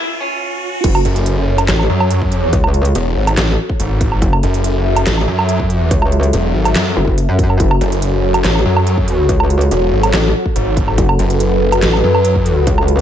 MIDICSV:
0, 0, Header, 1, 7, 480
1, 0, Start_track
1, 0, Key_signature, 3, "minor"
1, 0, Tempo, 422535
1, 953, Time_signature, 4, 2, 24, 8
1, 14782, End_track
2, 0, Start_track
2, 0, Title_t, "Supersaw synth"
2, 0, Program_c, 0, 81
2, 951, Note_on_c, 0, 66, 75
2, 952, Note_on_c, 0, 54, 82
2, 952, Note_on_c, 0, 69, 78
2, 952, Note_on_c, 0, 73, 91
2, 4779, Note_off_c, 0, 73, 0
2, 4791, Note_on_c, 0, 76, 91
2, 8618, Note_off_c, 0, 76, 0
2, 8631, Note_on_c, 0, 73, 92
2, 12459, Note_off_c, 0, 73, 0
2, 12474, Note_on_c, 0, 71, 92
2, 14782, Note_off_c, 0, 54, 0
2, 14782, Note_off_c, 0, 66, 0
2, 14782, Note_off_c, 0, 69, 0
2, 14782, Note_off_c, 0, 71, 0
2, 14782, End_track
3, 0, Start_track
3, 0, Title_t, "Clean electric guitar"
3, 0, Program_c, 1, 27
3, 233, Note_on_c, 1, 61, 93
3, 861, Note_off_c, 1, 61, 0
3, 14782, End_track
4, 0, Start_track
4, 0, Title_t, "Wobble bass"
4, 0, Program_c, 2, 39
4, 954, Note_on_c, 2, 30, 93
4, 1175, Note_off_c, 2, 30, 0
4, 1913, Note_on_c, 2, 33, 100
4, 2135, Note_off_c, 2, 33, 0
4, 2873, Note_on_c, 2, 37, 94
4, 3335, Note_off_c, 2, 37, 0
4, 3832, Note_on_c, 2, 33, 99
4, 4054, Note_off_c, 2, 33, 0
4, 4794, Note_on_c, 2, 30, 96
4, 5015, Note_off_c, 2, 30, 0
4, 5754, Note_on_c, 2, 33, 105
4, 5975, Note_off_c, 2, 33, 0
4, 6714, Note_on_c, 2, 37, 96
4, 7175, Note_off_c, 2, 37, 0
4, 7913, Note_on_c, 2, 30, 101
4, 8018, Note_off_c, 2, 30, 0
4, 8037, Note_on_c, 2, 30, 97
4, 8258, Note_off_c, 2, 30, 0
4, 8278, Note_on_c, 2, 42, 103
4, 8615, Note_off_c, 2, 42, 0
4, 8633, Note_on_c, 2, 30, 94
4, 8855, Note_off_c, 2, 30, 0
4, 9594, Note_on_c, 2, 33, 102
4, 9815, Note_off_c, 2, 33, 0
4, 10553, Note_on_c, 2, 37, 94
4, 11015, Note_off_c, 2, 37, 0
4, 11513, Note_on_c, 2, 33, 95
4, 11735, Note_off_c, 2, 33, 0
4, 12474, Note_on_c, 2, 30, 92
4, 12695, Note_off_c, 2, 30, 0
4, 13434, Note_on_c, 2, 33, 98
4, 13655, Note_off_c, 2, 33, 0
4, 14393, Note_on_c, 2, 37, 95
4, 14782, Note_off_c, 2, 37, 0
4, 14782, End_track
5, 0, Start_track
5, 0, Title_t, "Detuned saw bass"
5, 0, Program_c, 3, 39
5, 1194, Note_on_c, 3, 30, 96
5, 1895, Note_off_c, 3, 30, 0
5, 2153, Note_on_c, 3, 42, 97
5, 2653, Note_off_c, 3, 42, 0
5, 2653, Note_on_c, 3, 41, 97
5, 2855, Note_off_c, 3, 41, 0
5, 3353, Note_on_c, 3, 28, 98
5, 3575, Note_off_c, 3, 28, 0
5, 3593, Note_on_c, 3, 32, 93
5, 3815, Note_off_c, 3, 32, 0
5, 4313, Note_on_c, 3, 32, 95
5, 4775, Note_off_c, 3, 32, 0
5, 5034, Note_on_c, 3, 30, 97
5, 5735, Note_off_c, 3, 30, 0
5, 5994, Note_on_c, 3, 42, 98
5, 6494, Note_off_c, 3, 42, 0
5, 6494, Note_on_c, 3, 41, 98
5, 6695, Note_off_c, 3, 41, 0
5, 7194, Note_on_c, 3, 28, 100
5, 7415, Note_off_c, 3, 28, 0
5, 7434, Note_on_c, 3, 32, 91
5, 7655, Note_off_c, 3, 32, 0
5, 7674, Note_on_c, 3, 42, 98
5, 7895, Note_off_c, 3, 42, 0
5, 8873, Note_on_c, 3, 30, 93
5, 9575, Note_off_c, 3, 30, 0
5, 9833, Note_on_c, 3, 42, 94
5, 10535, Note_off_c, 3, 42, 0
5, 11033, Note_on_c, 3, 28, 96
5, 11255, Note_off_c, 3, 28, 0
5, 11274, Note_on_c, 3, 32, 89
5, 11496, Note_off_c, 3, 32, 0
5, 11994, Note_on_c, 3, 32, 101
5, 12455, Note_off_c, 3, 32, 0
5, 12714, Note_on_c, 3, 30, 92
5, 13415, Note_off_c, 3, 30, 0
5, 13674, Note_on_c, 3, 42, 100
5, 14375, Note_off_c, 3, 42, 0
5, 14782, End_track
6, 0, Start_track
6, 0, Title_t, "Riser"
6, 0, Program_c, 4, 103
6, 0, Note_on_c, 4, 60, 79
6, 953, Note_off_c, 4, 60, 0
6, 14782, End_track
7, 0, Start_track
7, 0, Title_t, "Drums"
7, 953, Note_on_c, 9, 42, 77
7, 953, Note_on_c, 9, 49, 96
7, 954, Note_on_c, 9, 36, 116
7, 1067, Note_off_c, 9, 36, 0
7, 1067, Note_off_c, 9, 42, 0
7, 1067, Note_off_c, 9, 49, 0
7, 1078, Note_on_c, 9, 77, 78
7, 1192, Note_off_c, 9, 77, 0
7, 1193, Note_on_c, 9, 42, 54
7, 1307, Note_off_c, 9, 42, 0
7, 1318, Note_on_c, 9, 42, 61
7, 1431, Note_off_c, 9, 42, 0
7, 1433, Note_on_c, 9, 42, 85
7, 1546, Note_off_c, 9, 42, 0
7, 1798, Note_on_c, 9, 42, 55
7, 1798, Note_on_c, 9, 77, 79
7, 1911, Note_off_c, 9, 42, 0
7, 1911, Note_off_c, 9, 77, 0
7, 1913, Note_on_c, 9, 38, 115
7, 1913, Note_on_c, 9, 39, 93
7, 1913, Note_on_c, 9, 42, 89
7, 2026, Note_off_c, 9, 38, 0
7, 2026, Note_off_c, 9, 39, 0
7, 2026, Note_off_c, 9, 42, 0
7, 2037, Note_on_c, 9, 77, 49
7, 2151, Note_off_c, 9, 77, 0
7, 2277, Note_on_c, 9, 77, 83
7, 2391, Note_off_c, 9, 77, 0
7, 2392, Note_on_c, 9, 42, 87
7, 2506, Note_off_c, 9, 42, 0
7, 2518, Note_on_c, 9, 36, 66
7, 2632, Note_off_c, 9, 36, 0
7, 2633, Note_on_c, 9, 42, 54
7, 2746, Note_off_c, 9, 42, 0
7, 2872, Note_on_c, 9, 42, 79
7, 2873, Note_on_c, 9, 36, 123
7, 2986, Note_off_c, 9, 42, 0
7, 2987, Note_off_c, 9, 36, 0
7, 2997, Note_on_c, 9, 77, 80
7, 3110, Note_off_c, 9, 77, 0
7, 3113, Note_on_c, 9, 42, 53
7, 3226, Note_off_c, 9, 42, 0
7, 3237, Note_on_c, 9, 42, 60
7, 3351, Note_off_c, 9, 42, 0
7, 3353, Note_on_c, 9, 42, 79
7, 3467, Note_off_c, 9, 42, 0
7, 3718, Note_on_c, 9, 42, 53
7, 3718, Note_on_c, 9, 77, 77
7, 3832, Note_off_c, 9, 42, 0
7, 3832, Note_off_c, 9, 77, 0
7, 3833, Note_on_c, 9, 38, 123
7, 3833, Note_on_c, 9, 39, 92
7, 3833, Note_on_c, 9, 42, 84
7, 3947, Note_off_c, 9, 38, 0
7, 3947, Note_off_c, 9, 39, 0
7, 3947, Note_off_c, 9, 42, 0
7, 4198, Note_on_c, 9, 36, 67
7, 4311, Note_off_c, 9, 36, 0
7, 4314, Note_on_c, 9, 42, 84
7, 4427, Note_off_c, 9, 42, 0
7, 4553, Note_on_c, 9, 36, 108
7, 4554, Note_on_c, 9, 42, 57
7, 4667, Note_off_c, 9, 36, 0
7, 4667, Note_off_c, 9, 42, 0
7, 4679, Note_on_c, 9, 77, 51
7, 4792, Note_off_c, 9, 77, 0
7, 4793, Note_on_c, 9, 36, 127
7, 4794, Note_on_c, 9, 42, 74
7, 4907, Note_off_c, 9, 36, 0
7, 4908, Note_off_c, 9, 42, 0
7, 4919, Note_on_c, 9, 77, 83
7, 5032, Note_off_c, 9, 77, 0
7, 5034, Note_on_c, 9, 42, 51
7, 5148, Note_off_c, 9, 42, 0
7, 5159, Note_on_c, 9, 42, 55
7, 5273, Note_off_c, 9, 42, 0
7, 5274, Note_on_c, 9, 42, 80
7, 5388, Note_off_c, 9, 42, 0
7, 5640, Note_on_c, 9, 42, 54
7, 5640, Note_on_c, 9, 77, 76
7, 5753, Note_off_c, 9, 42, 0
7, 5753, Note_off_c, 9, 77, 0
7, 5755, Note_on_c, 9, 38, 127
7, 5755, Note_on_c, 9, 39, 90
7, 5755, Note_on_c, 9, 42, 79
7, 5869, Note_off_c, 9, 38, 0
7, 5869, Note_off_c, 9, 39, 0
7, 5869, Note_off_c, 9, 42, 0
7, 5880, Note_on_c, 9, 77, 51
7, 5994, Note_off_c, 9, 77, 0
7, 6120, Note_on_c, 9, 77, 81
7, 6233, Note_off_c, 9, 77, 0
7, 6234, Note_on_c, 9, 42, 81
7, 6348, Note_off_c, 9, 42, 0
7, 6358, Note_on_c, 9, 36, 66
7, 6472, Note_off_c, 9, 36, 0
7, 6475, Note_on_c, 9, 42, 51
7, 6589, Note_off_c, 9, 42, 0
7, 6714, Note_on_c, 9, 36, 127
7, 6714, Note_on_c, 9, 42, 74
7, 6827, Note_off_c, 9, 36, 0
7, 6828, Note_off_c, 9, 42, 0
7, 6838, Note_on_c, 9, 77, 85
7, 6952, Note_off_c, 9, 77, 0
7, 6954, Note_on_c, 9, 42, 51
7, 7068, Note_off_c, 9, 42, 0
7, 7078, Note_on_c, 9, 42, 55
7, 7192, Note_off_c, 9, 42, 0
7, 7193, Note_on_c, 9, 42, 80
7, 7307, Note_off_c, 9, 42, 0
7, 7559, Note_on_c, 9, 42, 53
7, 7559, Note_on_c, 9, 77, 81
7, 7672, Note_off_c, 9, 42, 0
7, 7672, Note_off_c, 9, 77, 0
7, 7674, Note_on_c, 9, 38, 127
7, 7674, Note_on_c, 9, 39, 92
7, 7674, Note_on_c, 9, 42, 78
7, 7787, Note_off_c, 9, 38, 0
7, 7787, Note_off_c, 9, 39, 0
7, 7787, Note_off_c, 9, 42, 0
7, 8038, Note_on_c, 9, 36, 63
7, 8151, Note_off_c, 9, 36, 0
7, 8154, Note_on_c, 9, 42, 77
7, 8268, Note_off_c, 9, 42, 0
7, 8393, Note_on_c, 9, 36, 105
7, 8394, Note_on_c, 9, 42, 52
7, 8507, Note_off_c, 9, 36, 0
7, 8507, Note_off_c, 9, 42, 0
7, 8518, Note_on_c, 9, 77, 53
7, 8632, Note_off_c, 9, 77, 0
7, 8633, Note_on_c, 9, 36, 122
7, 8634, Note_on_c, 9, 42, 73
7, 8746, Note_off_c, 9, 36, 0
7, 8747, Note_off_c, 9, 42, 0
7, 8758, Note_on_c, 9, 77, 88
7, 8872, Note_off_c, 9, 77, 0
7, 8874, Note_on_c, 9, 42, 49
7, 8988, Note_off_c, 9, 42, 0
7, 8999, Note_on_c, 9, 42, 53
7, 9112, Note_off_c, 9, 42, 0
7, 9113, Note_on_c, 9, 42, 81
7, 9227, Note_off_c, 9, 42, 0
7, 9477, Note_on_c, 9, 42, 52
7, 9477, Note_on_c, 9, 77, 83
7, 9591, Note_off_c, 9, 42, 0
7, 9591, Note_off_c, 9, 77, 0
7, 9593, Note_on_c, 9, 38, 121
7, 9593, Note_on_c, 9, 39, 86
7, 9593, Note_on_c, 9, 42, 75
7, 9707, Note_off_c, 9, 38, 0
7, 9707, Note_off_c, 9, 39, 0
7, 9707, Note_off_c, 9, 42, 0
7, 9717, Note_on_c, 9, 77, 54
7, 9831, Note_off_c, 9, 77, 0
7, 9958, Note_on_c, 9, 77, 85
7, 10071, Note_off_c, 9, 77, 0
7, 10074, Note_on_c, 9, 42, 78
7, 10187, Note_off_c, 9, 42, 0
7, 10198, Note_on_c, 9, 36, 62
7, 10311, Note_off_c, 9, 36, 0
7, 10314, Note_on_c, 9, 42, 52
7, 10427, Note_off_c, 9, 42, 0
7, 10553, Note_on_c, 9, 36, 114
7, 10554, Note_on_c, 9, 42, 76
7, 10667, Note_off_c, 9, 36, 0
7, 10668, Note_off_c, 9, 42, 0
7, 10679, Note_on_c, 9, 77, 91
7, 10792, Note_off_c, 9, 77, 0
7, 10794, Note_on_c, 9, 42, 50
7, 10908, Note_off_c, 9, 42, 0
7, 10919, Note_on_c, 9, 42, 57
7, 11032, Note_off_c, 9, 42, 0
7, 11034, Note_on_c, 9, 42, 81
7, 11148, Note_off_c, 9, 42, 0
7, 11398, Note_on_c, 9, 42, 55
7, 11398, Note_on_c, 9, 77, 88
7, 11512, Note_off_c, 9, 42, 0
7, 11512, Note_off_c, 9, 77, 0
7, 11513, Note_on_c, 9, 38, 117
7, 11513, Note_on_c, 9, 39, 92
7, 11513, Note_on_c, 9, 42, 78
7, 11627, Note_off_c, 9, 38, 0
7, 11627, Note_off_c, 9, 39, 0
7, 11627, Note_off_c, 9, 42, 0
7, 11878, Note_on_c, 9, 36, 59
7, 11992, Note_off_c, 9, 36, 0
7, 11994, Note_on_c, 9, 42, 84
7, 12108, Note_off_c, 9, 42, 0
7, 12234, Note_on_c, 9, 36, 100
7, 12234, Note_on_c, 9, 42, 54
7, 12347, Note_off_c, 9, 36, 0
7, 12348, Note_off_c, 9, 42, 0
7, 12359, Note_on_c, 9, 77, 54
7, 12473, Note_off_c, 9, 77, 0
7, 12474, Note_on_c, 9, 36, 117
7, 12474, Note_on_c, 9, 42, 84
7, 12587, Note_off_c, 9, 36, 0
7, 12588, Note_off_c, 9, 42, 0
7, 12599, Note_on_c, 9, 77, 86
7, 12712, Note_off_c, 9, 77, 0
7, 12713, Note_on_c, 9, 42, 54
7, 12827, Note_off_c, 9, 42, 0
7, 12838, Note_on_c, 9, 42, 61
7, 12952, Note_off_c, 9, 42, 0
7, 12953, Note_on_c, 9, 42, 84
7, 13067, Note_off_c, 9, 42, 0
7, 13318, Note_on_c, 9, 42, 57
7, 13318, Note_on_c, 9, 77, 82
7, 13431, Note_off_c, 9, 42, 0
7, 13431, Note_off_c, 9, 77, 0
7, 13432, Note_on_c, 9, 38, 118
7, 13432, Note_on_c, 9, 39, 88
7, 13432, Note_on_c, 9, 42, 84
7, 13546, Note_off_c, 9, 38, 0
7, 13546, Note_off_c, 9, 39, 0
7, 13546, Note_off_c, 9, 42, 0
7, 13557, Note_on_c, 9, 77, 56
7, 13671, Note_off_c, 9, 77, 0
7, 13797, Note_on_c, 9, 77, 85
7, 13911, Note_off_c, 9, 77, 0
7, 13912, Note_on_c, 9, 42, 81
7, 14025, Note_off_c, 9, 42, 0
7, 14038, Note_on_c, 9, 36, 58
7, 14152, Note_off_c, 9, 36, 0
7, 14152, Note_on_c, 9, 42, 53
7, 14266, Note_off_c, 9, 42, 0
7, 14392, Note_on_c, 9, 42, 80
7, 14393, Note_on_c, 9, 36, 119
7, 14506, Note_off_c, 9, 42, 0
7, 14507, Note_off_c, 9, 36, 0
7, 14517, Note_on_c, 9, 77, 81
7, 14631, Note_off_c, 9, 77, 0
7, 14633, Note_on_c, 9, 42, 57
7, 14747, Note_off_c, 9, 42, 0
7, 14782, End_track
0, 0, End_of_file